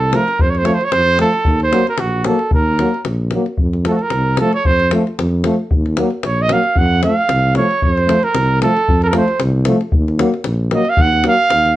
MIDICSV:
0, 0, Header, 1, 6, 480
1, 0, Start_track
1, 0, Tempo, 531915
1, 358, Time_signature, 2, 2, 24, 8
1, 5638, Tempo, 526316
1, 10667, End_track
2, 0, Start_track
2, 0, Title_t, "Trumpet"
2, 0, Program_c, 0, 56
2, 0, Note_on_c, 0, 69, 85
2, 141, Note_on_c, 0, 70, 81
2, 155, Note_off_c, 0, 69, 0
2, 374, Note_on_c, 0, 72, 75
2, 387, Note_off_c, 0, 70, 0
2, 449, Note_on_c, 0, 73, 67
2, 463, Note_off_c, 0, 72, 0
2, 522, Note_on_c, 0, 72, 81
2, 536, Note_off_c, 0, 73, 0
2, 595, Note_on_c, 0, 73, 78
2, 609, Note_off_c, 0, 72, 0
2, 669, Note_on_c, 0, 72, 73
2, 682, Note_off_c, 0, 73, 0
2, 760, Note_on_c, 0, 73, 84
2, 774, Note_off_c, 0, 72, 0
2, 831, Note_on_c, 0, 72, 106
2, 845, Note_off_c, 0, 73, 0
2, 1090, Note_off_c, 0, 72, 0
2, 1096, Note_on_c, 0, 69, 87
2, 1437, Note_off_c, 0, 69, 0
2, 1474, Note_on_c, 0, 72, 87
2, 1689, Note_off_c, 0, 72, 0
2, 1706, Note_on_c, 0, 70, 79
2, 1799, Note_on_c, 0, 66, 81
2, 1812, Note_off_c, 0, 70, 0
2, 2043, Note_on_c, 0, 69, 73
2, 2056, Note_off_c, 0, 66, 0
2, 2283, Note_off_c, 0, 69, 0
2, 2292, Note_on_c, 0, 70, 77
2, 2734, Note_off_c, 0, 70, 0
2, 3497, Note_on_c, 0, 69, 65
2, 3523, Note_on_c, 0, 66, 53
2, 3537, Note_off_c, 0, 69, 0
2, 3555, Note_on_c, 0, 69, 61
2, 3569, Note_off_c, 0, 66, 0
2, 3629, Note_on_c, 0, 70, 85
2, 3643, Note_off_c, 0, 69, 0
2, 3964, Note_off_c, 0, 70, 0
2, 3969, Note_on_c, 0, 69, 80
2, 4090, Note_off_c, 0, 69, 0
2, 4100, Note_on_c, 0, 73, 79
2, 4205, Note_on_c, 0, 72, 86
2, 4218, Note_off_c, 0, 73, 0
2, 4442, Note_off_c, 0, 72, 0
2, 5650, Note_on_c, 0, 73, 88
2, 5793, Note_on_c, 0, 75, 102
2, 5807, Note_off_c, 0, 73, 0
2, 5893, Note_on_c, 0, 77, 88
2, 5907, Note_off_c, 0, 75, 0
2, 6124, Note_on_c, 0, 78, 100
2, 6138, Note_off_c, 0, 77, 0
2, 6353, Note_off_c, 0, 78, 0
2, 6359, Note_on_c, 0, 77, 88
2, 6806, Note_off_c, 0, 77, 0
2, 6841, Note_on_c, 0, 73, 83
2, 7083, Note_off_c, 0, 73, 0
2, 7083, Note_on_c, 0, 73, 80
2, 7183, Note_off_c, 0, 73, 0
2, 7183, Note_on_c, 0, 72, 80
2, 7454, Note_on_c, 0, 70, 96
2, 7467, Note_off_c, 0, 72, 0
2, 7798, Note_off_c, 0, 70, 0
2, 7803, Note_on_c, 0, 69, 87
2, 8150, Note_off_c, 0, 69, 0
2, 8180, Note_on_c, 0, 70, 82
2, 8196, Note_on_c, 0, 69, 63
2, 8209, Note_off_c, 0, 70, 0
2, 8236, Note_on_c, 0, 70, 78
2, 8249, Note_off_c, 0, 69, 0
2, 8285, Note_off_c, 0, 70, 0
2, 8301, Note_on_c, 0, 72, 67
2, 8515, Note_off_c, 0, 72, 0
2, 9738, Note_on_c, 0, 75, 87
2, 9874, Note_on_c, 0, 77, 104
2, 9888, Note_off_c, 0, 75, 0
2, 9984, Note_on_c, 0, 78, 94
2, 9998, Note_off_c, 0, 77, 0
2, 10210, Note_off_c, 0, 78, 0
2, 10226, Note_on_c, 0, 77, 107
2, 10657, Note_off_c, 0, 77, 0
2, 10667, End_track
3, 0, Start_track
3, 0, Title_t, "French horn"
3, 0, Program_c, 1, 60
3, 102, Note_on_c, 1, 57, 60
3, 201, Note_off_c, 1, 57, 0
3, 574, Note_on_c, 1, 57, 67
3, 676, Note_off_c, 1, 57, 0
3, 1071, Note_on_c, 1, 57, 66
3, 1169, Note_off_c, 1, 57, 0
3, 1553, Note_on_c, 1, 58, 70
3, 1651, Note_off_c, 1, 58, 0
3, 2043, Note_on_c, 1, 58, 69
3, 2139, Note_off_c, 1, 58, 0
3, 2531, Note_on_c, 1, 58, 60
3, 2626, Note_off_c, 1, 58, 0
3, 3009, Note_on_c, 1, 58, 59
3, 3104, Note_off_c, 1, 58, 0
3, 3491, Note_on_c, 1, 57, 61
3, 3585, Note_off_c, 1, 57, 0
3, 3983, Note_on_c, 1, 57, 64
3, 4075, Note_off_c, 1, 57, 0
3, 4444, Note_on_c, 1, 57, 77
3, 4539, Note_off_c, 1, 57, 0
3, 4923, Note_on_c, 1, 57, 67
3, 5018, Note_off_c, 1, 57, 0
3, 5399, Note_on_c, 1, 58, 67
3, 5494, Note_off_c, 1, 58, 0
3, 5878, Note_on_c, 1, 58, 63
3, 5974, Note_off_c, 1, 58, 0
3, 6364, Note_on_c, 1, 57, 63
3, 6459, Note_off_c, 1, 57, 0
3, 6831, Note_on_c, 1, 57, 54
3, 6929, Note_off_c, 1, 57, 0
3, 7302, Note_on_c, 1, 57, 61
3, 7402, Note_off_c, 1, 57, 0
3, 7798, Note_on_c, 1, 57, 59
3, 7894, Note_off_c, 1, 57, 0
3, 8269, Note_on_c, 1, 57, 79
3, 8367, Note_off_c, 1, 57, 0
3, 8763, Note_on_c, 1, 57, 78
3, 8858, Note_off_c, 1, 57, 0
3, 9242, Note_on_c, 1, 58, 74
3, 9337, Note_off_c, 1, 58, 0
3, 9727, Note_on_c, 1, 58, 65
3, 9821, Note_off_c, 1, 58, 0
3, 10189, Note_on_c, 1, 58, 64
3, 10286, Note_off_c, 1, 58, 0
3, 10667, End_track
4, 0, Start_track
4, 0, Title_t, "Euphonium"
4, 0, Program_c, 2, 58
4, 123, Note_on_c, 2, 53, 54
4, 218, Note_off_c, 2, 53, 0
4, 606, Note_on_c, 2, 53, 67
4, 701, Note_off_c, 2, 53, 0
4, 1086, Note_on_c, 2, 53, 53
4, 1181, Note_off_c, 2, 53, 0
4, 1558, Note_on_c, 2, 54, 68
4, 1654, Note_off_c, 2, 54, 0
4, 2035, Note_on_c, 2, 54, 54
4, 2133, Note_off_c, 2, 54, 0
4, 2519, Note_on_c, 2, 54, 57
4, 2616, Note_off_c, 2, 54, 0
4, 3011, Note_on_c, 2, 54, 51
4, 3105, Note_off_c, 2, 54, 0
4, 3488, Note_on_c, 2, 53, 59
4, 3583, Note_off_c, 2, 53, 0
4, 3968, Note_on_c, 2, 53, 63
4, 4062, Note_off_c, 2, 53, 0
4, 4447, Note_on_c, 2, 53, 63
4, 4541, Note_off_c, 2, 53, 0
4, 4918, Note_on_c, 2, 53, 62
4, 5014, Note_off_c, 2, 53, 0
4, 5401, Note_on_c, 2, 54, 68
4, 5495, Note_off_c, 2, 54, 0
4, 5873, Note_on_c, 2, 54, 62
4, 5970, Note_off_c, 2, 54, 0
4, 6360, Note_on_c, 2, 53, 51
4, 6456, Note_off_c, 2, 53, 0
4, 6843, Note_on_c, 2, 53, 55
4, 6939, Note_off_c, 2, 53, 0
4, 7315, Note_on_c, 2, 53, 55
4, 7412, Note_off_c, 2, 53, 0
4, 7805, Note_on_c, 2, 53, 56
4, 7900, Note_off_c, 2, 53, 0
4, 8271, Note_on_c, 2, 53, 71
4, 8369, Note_off_c, 2, 53, 0
4, 8761, Note_on_c, 2, 53, 60
4, 8857, Note_off_c, 2, 53, 0
4, 9233, Note_on_c, 2, 54, 66
4, 9331, Note_off_c, 2, 54, 0
4, 9723, Note_on_c, 2, 54, 58
4, 9818, Note_off_c, 2, 54, 0
4, 10200, Note_on_c, 2, 54, 59
4, 10296, Note_off_c, 2, 54, 0
4, 10667, End_track
5, 0, Start_track
5, 0, Title_t, "Tuba"
5, 0, Program_c, 3, 58
5, 0, Note_on_c, 3, 36, 88
5, 147, Note_off_c, 3, 36, 0
5, 356, Note_on_c, 3, 41, 80
5, 621, Note_off_c, 3, 41, 0
5, 843, Note_on_c, 3, 41, 93
5, 1107, Note_off_c, 3, 41, 0
5, 1316, Note_on_c, 3, 39, 94
5, 1582, Note_off_c, 3, 39, 0
5, 1793, Note_on_c, 3, 34, 83
5, 2060, Note_off_c, 3, 34, 0
5, 2283, Note_on_c, 3, 39, 97
5, 2547, Note_off_c, 3, 39, 0
5, 2755, Note_on_c, 3, 34, 91
5, 3021, Note_off_c, 3, 34, 0
5, 3233, Note_on_c, 3, 41, 86
5, 3499, Note_off_c, 3, 41, 0
5, 3716, Note_on_c, 3, 36, 89
5, 3981, Note_off_c, 3, 36, 0
5, 4199, Note_on_c, 3, 41, 82
5, 4463, Note_off_c, 3, 41, 0
5, 4684, Note_on_c, 3, 41, 101
5, 4946, Note_off_c, 3, 41, 0
5, 5160, Note_on_c, 3, 39, 91
5, 5422, Note_off_c, 3, 39, 0
5, 5634, Note_on_c, 3, 34, 88
5, 5899, Note_off_c, 3, 34, 0
5, 6115, Note_on_c, 3, 41, 99
5, 6381, Note_off_c, 3, 41, 0
5, 6595, Note_on_c, 3, 36, 99
5, 6861, Note_off_c, 3, 36, 0
5, 7079, Note_on_c, 3, 41, 83
5, 7344, Note_off_c, 3, 41, 0
5, 7556, Note_on_c, 3, 36, 100
5, 7822, Note_off_c, 3, 36, 0
5, 8040, Note_on_c, 3, 41, 88
5, 8304, Note_off_c, 3, 41, 0
5, 8521, Note_on_c, 3, 36, 109
5, 8785, Note_off_c, 3, 36, 0
5, 9002, Note_on_c, 3, 39, 92
5, 9265, Note_off_c, 3, 39, 0
5, 9478, Note_on_c, 3, 34, 92
5, 9741, Note_off_c, 3, 34, 0
5, 9958, Note_on_c, 3, 39, 97
5, 10221, Note_off_c, 3, 39, 0
5, 10436, Note_on_c, 3, 39, 85
5, 10667, Note_off_c, 3, 39, 0
5, 10667, End_track
6, 0, Start_track
6, 0, Title_t, "Davul"
6, 116, Note_on_c, 9, 37, 78
6, 206, Note_off_c, 9, 37, 0
6, 253, Note_on_c, 9, 37, 28
6, 343, Note_off_c, 9, 37, 0
6, 354, Note_on_c, 9, 43, 102
6, 445, Note_off_c, 9, 43, 0
6, 495, Note_on_c, 9, 37, 26
6, 585, Note_off_c, 9, 37, 0
6, 588, Note_on_c, 9, 37, 73
6, 678, Note_off_c, 9, 37, 0
6, 730, Note_on_c, 9, 37, 23
6, 820, Note_off_c, 9, 37, 0
6, 830, Note_on_c, 9, 37, 82
6, 920, Note_off_c, 9, 37, 0
6, 1073, Note_on_c, 9, 37, 71
6, 1163, Note_off_c, 9, 37, 0
6, 1203, Note_on_c, 9, 37, 26
6, 1293, Note_off_c, 9, 37, 0
6, 1305, Note_on_c, 9, 43, 94
6, 1395, Note_off_c, 9, 43, 0
6, 1443, Note_on_c, 9, 37, 24
6, 1534, Note_off_c, 9, 37, 0
6, 1558, Note_on_c, 9, 37, 73
6, 1648, Note_off_c, 9, 37, 0
6, 1690, Note_on_c, 9, 37, 26
6, 1780, Note_off_c, 9, 37, 0
6, 1784, Note_on_c, 9, 37, 72
6, 1874, Note_off_c, 9, 37, 0
6, 2026, Note_on_c, 9, 37, 71
6, 2116, Note_off_c, 9, 37, 0
6, 2158, Note_on_c, 9, 37, 26
6, 2248, Note_off_c, 9, 37, 0
6, 2264, Note_on_c, 9, 43, 98
6, 2355, Note_off_c, 9, 43, 0
6, 2516, Note_on_c, 9, 37, 62
6, 2606, Note_off_c, 9, 37, 0
6, 2654, Note_on_c, 9, 37, 20
6, 2744, Note_off_c, 9, 37, 0
6, 2749, Note_on_c, 9, 37, 65
6, 2840, Note_off_c, 9, 37, 0
6, 2983, Note_on_c, 9, 37, 53
6, 3074, Note_off_c, 9, 37, 0
6, 3122, Note_on_c, 9, 37, 22
6, 3212, Note_off_c, 9, 37, 0
6, 3225, Note_on_c, 9, 43, 80
6, 3316, Note_off_c, 9, 43, 0
6, 3369, Note_on_c, 9, 37, 24
6, 3460, Note_off_c, 9, 37, 0
6, 3473, Note_on_c, 9, 37, 66
6, 3564, Note_off_c, 9, 37, 0
6, 3601, Note_on_c, 9, 37, 19
6, 3691, Note_off_c, 9, 37, 0
6, 3703, Note_on_c, 9, 37, 66
6, 3793, Note_off_c, 9, 37, 0
6, 3945, Note_on_c, 9, 37, 78
6, 4035, Note_off_c, 9, 37, 0
6, 4085, Note_on_c, 9, 37, 31
6, 4175, Note_off_c, 9, 37, 0
6, 4195, Note_on_c, 9, 43, 92
6, 4285, Note_off_c, 9, 43, 0
6, 4329, Note_on_c, 9, 37, 27
6, 4420, Note_off_c, 9, 37, 0
6, 4433, Note_on_c, 9, 37, 76
6, 4524, Note_off_c, 9, 37, 0
6, 4576, Note_on_c, 9, 37, 22
6, 4667, Note_off_c, 9, 37, 0
6, 4682, Note_on_c, 9, 37, 74
6, 4773, Note_off_c, 9, 37, 0
6, 4909, Note_on_c, 9, 37, 71
6, 4999, Note_off_c, 9, 37, 0
6, 5149, Note_on_c, 9, 43, 95
6, 5240, Note_off_c, 9, 43, 0
6, 5286, Note_on_c, 9, 37, 27
6, 5376, Note_off_c, 9, 37, 0
6, 5386, Note_on_c, 9, 37, 73
6, 5476, Note_off_c, 9, 37, 0
6, 5510, Note_on_c, 9, 37, 21
6, 5600, Note_off_c, 9, 37, 0
6, 5625, Note_on_c, 9, 37, 72
6, 5716, Note_off_c, 9, 37, 0
6, 5862, Note_on_c, 9, 37, 77
6, 5954, Note_off_c, 9, 37, 0
6, 5993, Note_on_c, 9, 37, 30
6, 6084, Note_off_c, 9, 37, 0
6, 6103, Note_on_c, 9, 43, 99
6, 6194, Note_off_c, 9, 43, 0
6, 6349, Note_on_c, 9, 37, 72
6, 6440, Note_off_c, 9, 37, 0
6, 6589, Note_on_c, 9, 37, 68
6, 6680, Note_off_c, 9, 37, 0
6, 6825, Note_on_c, 9, 37, 63
6, 6916, Note_off_c, 9, 37, 0
6, 6969, Note_on_c, 9, 37, 25
6, 7060, Note_off_c, 9, 37, 0
6, 7072, Note_on_c, 9, 43, 82
6, 7164, Note_off_c, 9, 43, 0
6, 7213, Note_on_c, 9, 37, 27
6, 7304, Note_off_c, 9, 37, 0
6, 7319, Note_on_c, 9, 37, 71
6, 7410, Note_off_c, 9, 37, 0
6, 7445, Note_on_c, 9, 37, 25
6, 7536, Note_off_c, 9, 37, 0
6, 7550, Note_on_c, 9, 37, 78
6, 7641, Note_off_c, 9, 37, 0
6, 7798, Note_on_c, 9, 37, 70
6, 7889, Note_off_c, 9, 37, 0
6, 7933, Note_on_c, 9, 37, 26
6, 8024, Note_off_c, 9, 37, 0
6, 8039, Note_on_c, 9, 43, 92
6, 8130, Note_off_c, 9, 43, 0
6, 8164, Note_on_c, 9, 37, 29
6, 8255, Note_off_c, 9, 37, 0
6, 8265, Note_on_c, 9, 37, 82
6, 8356, Note_off_c, 9, 37, 0
6, 8401, Note_on_c, 9, 37, 28
6, 8492, Note_off_c, 9, 37, 0
6, 8508, Note_on_c, 9, 37, 81
6, 8599, Note_off_c, 9, 37, 0
6, 8741, Note_on_c, 9, 37, 80
6, 8832, Note_off_c, 9, 37, 0
6, 8884, Note_on_c, 9, 37, 31
6, 8975, Note_off_c, 9, 37, 0
6, 8986, Note_on_c, 9, 43, 99
6, 9077, Note_off_c, 9, 43, 0
6, 9135, Note_on_c, 9, 37, 32
6, 9226, Note_off_c, 9, 37, 0
6, 9236, Note_on_c, 9, 37, 81
6, 9327, Note_off_c, 9, 37, 0
6, 9368, Note_on_c, 9, 37, 27
6, 9459, Note_off_c, 9, 37, 0
6, 9463, Note_on_c, 9, 37, 78
6, 9554, Note_off_c, 9, 37, 0
6, 9709, Note_on_c, 9, 37, 77
6, 9800, Note_off_c, 9, 37, 0
6, 9833, Note_on_c, 9, 37, 25
6, 9924, Note_off_c, 9, 37, 0
6, 9943, Note_on_c, 9, 43, 100
6, 10034, Note_off_c, 9, 43, 0
6, 10086, Note_on_c, 9, 37, 27
6, 10177, Note_off_c, 9, 37, 0
6, 10187, Note_on_c, 9, 37, 70
6, 10279, Note_off_c, 9, 37, 0
6, 10431, Note_on_c, 9, 37, 77
6, 10522, Note_off_c, 9, 37, 0
6, 10569, Note_on_c, 9, 37, 29
6, 10660, Note_off_c, 9, 37, 0
6, 10667, End_track
0, 0, End_of_file